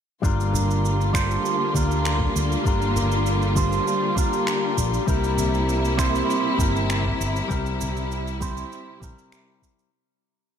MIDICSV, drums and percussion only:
0, 0, Header, 1, 2, 480
1, 0, Start_track
1, 0, Tempo, 606061
1, 185, Time_signature, 4, 2, 24, 8
1, 8386, End_track
2, 0, Start_track
2, 0, Title_t, "Drums"
2, 184, Note_on_c, 9, 36, 94
2, 194, Note_on_c, 9, 69, 40
2, 263, Note_off_c, 9, 36, 0
2, 273, Note_off_c, 9, 69, 0
2, 321, Note_on_c, 9, 69, 27
2, 400, Note_off_c, 9, 69, 0
2, 425, Note_on_c, 9, 63, 59
2, 428, Note_on_c, 9, 64, 83
2, 439, Note_on_c, 9, 69, 72
2, 505, Note_off_c, 9, 63, 0
2, 507, Note_off_c, 9, 64, 0
2, 518, Note_off_c, 9, 69, 0
2, 561, Note_on_c, 9, 69, 31
2, 640, Note_off_c, 9, 69, 0
2, 675, Note_on_c, 9, 69, 40
2, 754, Note_off_c, 9, 69, 0
2, 800, Note_on_c, 9, 69, 28
2, 879, Note_off_c, 9, 69, 0
2, 903, Note_on_c, 9, 36, 104
2, 909, Note_on_c, 9, 26, 79
2, 916, Note_on_c, 9, 69, 76
2, 982, Note_off_c, 9, 36, 0
2, 988, Note_off_c, 9, 26, 0
2, 995, Note_off_c, 9, 69, 0
2, 1038, Note_on_c, 9, 69, 28
2, 1117, Note_off_c, 9, 69, 0
2, 1153, Note_on_c, 9, 69, 41
2, 1232, Note_off_c, 9, 69, 0
2, 1383, Note_on_c, 9, 36, 101
2, 1385, Note_on_c, 9, 63, 61
2, 1389, Note_on_c, 9, 64, 78
2, 1392, Note_on_c, 9, 69, 74
2, 1462, Note_off_c, 9, 36, 0
2, 1465, Note_off_c, 9, 63, 0
2, 1468, Note_off_c, 9, 64, 0
2, 1471, Note_off_c, 9, 69, 0
2, 1516, Note_on_c, 9, 69, 30
2, 1595, Note_off_c, 9, 69, 0
2, 1627, Note_on_c, 9, 26, 75
2, 1633, Note_on_c, 9, 69, 40
2, 1706, Note_off_c, 9, 26, 0
2, 1713, Note_off_c, 9, 69, 0
2, 1741, Note_on_c, 9, 64, 77
2, 1746, Note_on_c, 9, 36, 57
2, 1820, Note_off_c, 9, 64, 0
2, 1825, Note_off_c, 9, 36, 0
2, 1872, Note_on_c, 9, 69, 77
2, 1951, Note_off_c, 9, 69, 0
2, 1996, Note_on_c, 9, 69, 34
2, 2076, Note_off_c, 9, 69, 0
2, 2102, Note_on_c, 9, 36, 115
2, 2111, Note_on_c, 9, 69, 41
2, 2181, Note_off_c, 9, 36, 0
2, 2190, Note_off_c, 9, 69, 0
2, 2232, Note_on_c, 9, 69, 28
2, 2312, Note_off_c, 9, 69, 0
2, 2344, Note_on_c, 9, 63, 65
2, 2345, Note_on_c, 9, 64, 82
2, 2349, Note_on_c, 9, 69, 73
2, 2423, Note_off_c, 9, 63, 0
2, 2425, Note_off_c, 9, 64, 0
2, 2428, Note_off_c, 9, 69, 0
2, 2469, Note_on_c, 9, 69, 32
2, 2548, Note_off_c, 9, 69, 0
2, 2584, Note_on_c, 9, 69, 44
2, 2664, Note_off_c, 9, 69, 0
2, 2710, Note_on_c, 9, 69, 29
2, 2790, Note_off_c, 9, 69, 0
2, 2815, Note_on_c, 9, 63, 78
2, 2821, Note_on_c, 9, 36, 100
2, 2823, Note_on_c, 9, 69, 72
2, 2894, Note_off_c, 9, 63, 0
2, 2900, Note_off_c, 9, 36, 0
2, 2902, Note_off_c, 9, 69, 0
2, 2950, Note_on_c, 9, 69, 30
2, 3029, Note_off_c, 9, 69, 0
2, 3069, Note_on_c, 9, 69, 43
2, 3148, Note_off_c, 9, 69, 0
2, 3297, Note_on_c, 9, 63, 63
2, 3302, Note_on_c, 9, 36, 107
2, 3308, Note_on_c, 9, 69, 79
2, 3376, Note_off_c, 9, 63, 0
2, 3381, Note_off_c, 9, 36, 0
2, 3387, Note_off_c, 9, 69, 0
2, 3431, Note_on_c, 9, 69, 34
2, 3510, Note_off_c, 9, 69, 0
2, 3540, Note_on_c, 9, 26, 74
2, 3547, Note_on_c, 9, 69, 43
2, 3620, Note_off_c, 9, 26, 0
2, 3626, Note_off_c, 9, 69, 0
2, 3782, Note_on_c, 9, 36, 60
2, 3786, Note_on_c, 9, 69, 82
2, 3861, Note_off_c, 9, 36, 0
2, 3865, Note_off_c, 9, 69, 0
2, 3912, Note_on_c, 9, 69, 33
2, 3991, Note_off_c, 9, 69, 0
2, 4021, Note_on_c, 9, 36, 113
2, 4025, Note_on_c, 9, 69, 43
2, 4100, Note_off_c, 9, 36, 0
2, 4104, Note_off_c, 9, 69, 0
2, 4149, Note_on_c, 9, 69, 29
2, 4229, Note_off_c, 9, 69, 0
2, 4259, Note_on_c, 9, 64, 78
2, 4262, Note_on_c, 9, 63, 56
2, 4264, Note_on_c, 9, 69, 81
2, 4338, Note_off_c, 9, 64, 0
2, 4341, Note_off_c, 9, 63, 0
2, 4343, Note_off_c, 9, 69, 0
2, 4390, Note_on_c, 9, 69, 32
2, 4469, Note_off_c, 9, 69, 0
2, 4508, Note_on_c, 9, 69, 43
2, 4587, Note_off_c, 9, 69, 0
2, 4632, Note_on_c, 9, 69, 31
2, 4711, Note_off_c, 9, 69, 0
2, 4741, Note_on_c, 9, 36, 102
2, 4742, Note_on_c, 9, 26, 73
2, 4749, Note_on_c, 9, 69, 79
2, 4820, Note_off_c, 9, 36, 0
2, 4821, Note_off_c, 9, 26, 0
2, 4828, Note_off_c, 9, 69, 0
2, 4874, Note_on_c, 9, 69, 34
2, 4953, Note_off_c, 9, 69, 0
2, 4992, Note_on_c, 9, 69, 42
2, 5072, Note_off_c, 9, 69, 0
2, 5217, Note_on_c, 9, 64, 83
2, 5218, Note_on_c, 9, 63, 66
2, 5222, Note_on_c, 9, 36, 110
2, 5228, Note_on_c, 9, 69, 80
2, 5296, Note_off_c, 9, 64, 0
2, 5297, Note_off_c, 9, 63, 0
2, 5301, Note_off_c, 9, 36, 0
2, 5307, Note_off_c, 9, 69, 0
2, 5356, Note_on_c, 9, 69, 32
2, 5435, Note_off_c, 9, 69, 0
2, 5463, Note_on_c, 9, 26, 73
2, 5470, Note_on_c, 9, 69, 41
2, 5543, Note_off_c, 9, 26, 0
2, 5550, Note_off_c, 9, 69, 0
2, 5586, Note_on_c, 9, 36, 58
2, 5593, Note_on_c, 9, 64, 70
2, 5665, Note_off_c, 9, 36, 0
2, 5672, Note_off_c, 9, 64, 0
2, 5711, Note_on_c, 9, 69, 86
2, 5790, Note_off_c, 9, 69, 0
2, 5832, Note_on_c, 9, 69, 34
2, 5911, Note_off_c, 9, 69, 0
2, 5943, Note_on_c, 9, 36, 108
2, 5947, Note_on_c, 9, 69, 44
2, 6022, Note_off_c, 9, 36, 0
2, 6026, Note_off_c, 9, 69, 0
2, 6069, Note_on_c, 9, 69, 28
2, 6148, Note_off_c, 9, 69, 0
2, 6179, Note_on_c, 9, 63, 67
2, 6183, Note_on_c, 9, 64, 69
2, 6186, Note_on_c, 9, 69, 80
2, 6258, Note_off_c, 9, 63, 0
2, 6262, Note_off_c, 9, 64, 0
2, 6265, Note_off_c, 9, 69, 0
2, 6310, Note_on_c, 9, 69, 33
2, 6389, Note_off_c, 9, 69, 0
2, 6428, Note_on_c, 9, 69, 43
2, 6507, Note_off_c, 9, 69, 0
2, 6554, Note_on_c, 9, 69, 31
2, 6633, Note_off_c, 9, 69, 0
2, 6659, Note_on_c, 9, 63, 78
2, 6663, Note_on_c, 9, 36, 106
2, 6667, Note_on_c, 9, 69, 76
2, 6738, Note_off_c, 9, 63, 0
2, 6742, Note_off_c, 9, 36, 0
2, 6746, Note_off_c, 9, 69, 0
2, 6790, Note_on_c, 9, 69, 34
2, 6869, Note_off_c, 9, 69, 0
2, 6909, Note_on_c, 9, 69, 41
2, 6988, Note_off_c, 9, 69, 0
2, 7138, Note_on_c, 9, 63, 63
2, 7142, Note_on_c, 9, 36, 109
2, 7150, Note_on_c, 9, 69, 78
2, 7218, Note_off_c, 9, 63, 0
2, 7221, Note_off_c, 9, 36, 0
2, 7229, Note_off_c, 9, 69, 0
2, 7275, Note_on_c, 9, 69, 34
2, 7355, Note_off_c, 9, 69, 0
2, 7385, Note_on_c, 9, 26, 74
2, 7391, Note_on_c, 9, 69, 45
2, 7464, Note_off_c, 9, 26, 0
2, 7471, Note_off_c, 9, 69, 0
2, 7621, Note_on_c, 9, 36, 58
2, 7631, Note_on_c, 9, 69, 81
2, 7700, Note_off_c, 9, 36, 0
2, 7711, Note_off_c, 9, 69, 0
2, 7753, Note_on_c, 9, 69, 36
2, 7832, Note_off_c, 9, 69, 0
2, 8386, End_track
0, 0, End_of_file